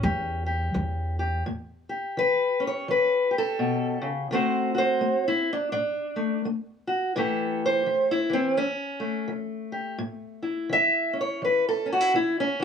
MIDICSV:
0, 0, Header, 1, 3, 480
1, 0, Start_track
1, 0, Tempo, 711744
1, 978, Time_signature, 4, 2, 24, 8
1, 8526, End_track
2, 0, Start_track
2, 0, Title_t, "Steel-string acoustic guitar"
2, 0, Program_c, 0, 25
2, 0, Note_on_c, 0, 61, 46
2, 0, Note_on_c, 0, 69, 86
2, 23, Note_on_c, 0, 52, 61
2, 25, Note_on_c, 0, 67, 47
2, 305, Note_off_c, 0, 67, 0
2, 313, Note_on_c, 0, 67, 43
2, 463, Note_off_c, 0, 52, 0
2, 500, Note_on_c, 0, 52, 53
2, 790, Note_off_c, 0, 67, 0
2, 803, Note_on_c, 0, 67, 49
2, 941, Note_off_c, 0, 52, 0
2, 963, Note_off_c, 0, 67, 0
2, 964, Note_off_c, 0, 61, 0
2, 978, Note_off_c, 0, 69, 0
2, 985, Note_on_c, 0, 45, 77
2, 1277, Note_on_c, 0, 67, 43
2, 1423, Note_off_c, 0, 45, 0
2, 1464, Note_on_c, 0, 52, 60
2, 1474, Note_on_c, 0, 71, 90
2, 1753, Note_on_c, 0, 61, 45
2, 1786, Note_off_c, 0, 71, 0
2, 1802, Note_on_c, 0, 73, 72
2, 1903, Note_off_c, 0, 52, 0
2, 1944, Note_on_c, 0, 52, 65
2, 1950, Note_off_c, 0, 73, 0
2, 1960, Note_on_c, 0, 71, 78
2, 2223, Note_off_c, 0, 67, 0
2, 2231, Note_on_c, 0, 67, 42
2, 2269, Note_off_c, 0, 71, 0
2, 2281, Note_on_c, 0, 69, 89
2, 2383, Note_off_c, 0, 52, 0
2, 2421, Note_on_c, 0, 47, 57
2, 2705, Note_off_c, 0, 47, 0
2, 2708, Note_on_c, 0, 49, 69
2, 2749, Note_off_c, 0, 69, 0
2, 2877, Note_off_c, 0, 67, 0
2, 2878, Note_off_c, 0, 61, 0
2, 2898, Note_off_c, 0, 49, 0
2, 2906, Note_on_c, 0, 50, 77
2, 2916, Note_on_c, 0, 57, 55
2, 2920, Note_on_c, 0, 60, 55
2, 2925, Note_on_c, 0, 66, 55
2, 2930, Note_on_c, 0, 72, 57
2, 3192, Note_off_c, 0, 66, 0
2, 3201, Note_on_c, 0, 66, 49
2, 3216, Note_off_c, 0, 72, 0
2, 3224, Note_on_c, 0, 72, 92
2, 3344, Note_off_c, 0, 50, 0
2, 3375, Note_off_c, 0, 57, 0
2, 3378, Note_on_c, 0, 57, 60
2, 3541, Note_off_c, 0, 72, 0
2, 3544, Note_off_c, 0, 66, 0
2, 3559, Note_on_c, 0, 64, 88
2, 3709, Note_off_c, 0, 60, 0
2, 3709, Note_off_c, 0, 64, 0
2, 3728, Note_on_c, 0, 62, 81
2, 3820, Note_off_c, 0, 57, 0
2, 3850, Note_off_c, 0, 62, 0
2, 3858, Note_on_c, 0, 62, 77
2, 3861, Note_on_c, 0, 45, 60
2, 4155, Note_on_c, 0, 57, 43
2, 4302, Note_off_c, 0, 45, 0
2, 4338, Note_off_c, 0, 62, 0
2, 4349, Note_off_c, 0, 57, 0
2, 4352, Note_on_c, 0, 57, 58
2, 4636, Note_on_c, 0, 66, 50
2, 4787, Note_off_c, 0, 57, 0
2, 4799, Note_off_c, 0, 66, 0
2, 4826, Note_on_c, 0, 45, 85
2, 4830, Note_on_c, 0, 52, 56
2, 4837, Note_on_c, 0, 57, 54
2, 4839, Note_on_c, 0, 67, 52
2, 4844, Note_on_c, 0, 69, 55
2, 5161, Note_off_c, 0, 69, 0
2, 5163, Note_on_c, 0, 72, 90
2, 5264, Note_off_c, 0, 45, 0
2, 5301, Note_off_c, 0, 52, 0
2, 5303, Note_on_c, 0, 52, 63
2, 5468, Note_off_c, 0, 67, 0
2, 5471, Note_off_c, 0, 72, 0
2, 5471, Note_on_c, 0, 64, 81
2, 5587, Note_off_c, 0, 52, 0
2, 5595, Note_on_c, 0, 52, 50
2, 5617, Note_off_c, 0, 57, 0
2, 5619, Note_on_c, 0, 60, 77
2, 5624, Note_off_c, 0, 64, 0
2, 5772, Note_off_c, 0, 52, 0
2, 5778, Note_off_c, 0, 60, 0
2, 5779, Note_on_c, 0, 52, 64
2, 5782, Note_on_c, 0, 61, 88
2, 6069, Note_on_c, 0, 57, 43
2, 6221, Note_off_c, 0, 52, 0
2, 6257, Note_on_c, 0, 52, 58
2, 6259, Note_off_c, 0, 61, 0
2, 6556, Note_on_c, 0, 67, 47
2, 6699, Note_off_c, 0, 52, 0
2, 6719, Note_off_c, 0, 67, 0
2, 6734, Note_on_c, 0, 45, 79
2, 7031, Note_on_c, 0, 64, 43
2, 7177, Note_off_c, 0, 45, 0
2, 7212, Note_on_c, 0, 52, 61
2, 7234, Note_on_c, 0, 76, 96
2, 7505, Note_off_c, 0, 57, 0
2, 7508, Note_on_c, 0, 61, 45
2, 7545, Note_off_c, 0, 76, 0
2, 7558, Note_on_c, 0, 73, 77
2, 7656, Note_off_c, 0, 52, 0
2, 7701, Note_on_c, 0, 52, 64
2, 7707, Note_off_c, 0, 73, 0
2, 7719, Note_on_c, 0, 71, 77
2, 7868, Note_off_c, 0, 71, 0
2, 7881, Note_on_c, 0, 69, 85
2, 7988, Note_off_c, 0, 64, 0
2, 7989, Note_off_c, 0, 61, 0
2, 7997, Note_on_c, 0, 61, 44
2, 8029, Note_off_c, 0, 69, 0
2, 8042, Note_on_c, 0, 66, 79
2, 8097, Note_off_c, 0, 61, 0
2, 8097, Note_on_c, 0, 64, 37
2, 8140, Note_off_c, 0, 52, 0
2, 8184, Note_off_c, 0, 64, 0
2, 8186, Note_on_c, 0, 52, 58
2, 8189, Note_off_c, 0, 66, 0
2, 8198, Note_on_c, 0, 64, 81
2, 8347, Note_off_c, 0, 64, 0
2, 8363, Note_on_c, 0, 61, 82
2, 8471, Note_off_c, 0, 52, 0
2, 8495, Note_on_c, 0, 52, 49
2, 8510, Note_off_c, 0, 61, 0
2, 8526, Note_off_c, 0, 52, 0
2, 8526, End_track
3, 0, Start_track
3, 0, Title_t, "Upright bass"
3, 0, Program_c, 1, 32
3, 22, Note_on_c, 1, 40, 99
3, 473, Note_off_c, 1, 40, 0
3, 502, Note_on_c, 1, 40, 77
3, 953, Note_off_c, 1, 40, 0
3, 8526, End_track
0, 0, End_of_file